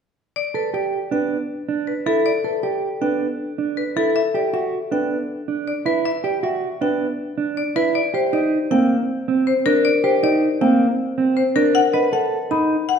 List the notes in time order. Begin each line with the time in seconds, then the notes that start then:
0.36 D5
0.54 A4 B4
0.74 G4 D5
1.11 B3 D4 G5
1.69 D4
1.87 B4
2.06 E4 A4
2.26 D5
2.44 A4 B4
2.63 G4 D5
3.02 B3 D4 G5
3.58 D4
3.77 B4
3.96 E4 A4
4.16 E5
4.34 G4 D5
4.53 F#4 E5
4.91 B3 D4 G5
5.48 D4
5.68 D5
5.86 E4 B4
6.05 E5
6.24 G4 D5
6.43 F#4 E5
6.81 B3 D4 G5
7.38 D4
7.57 D5
7.76 E4 B4
7.95 D5
8.14 G4 C5
8.33 D#4 D5
8.71 A#3 C4 G5
9.28 C4
9.47 C5
9.66 D4 A#4
9.85 D5
10.04 G4 C5
10.23 D#4 D5
10.61 A#3 C4 G5
11.18 C4
11.37 C5
11.56 D4 A#4
11.75 F#5
11.94 B4 D#5
12.13 A4 F#5
12.51 D#4 B5
12.89 F#5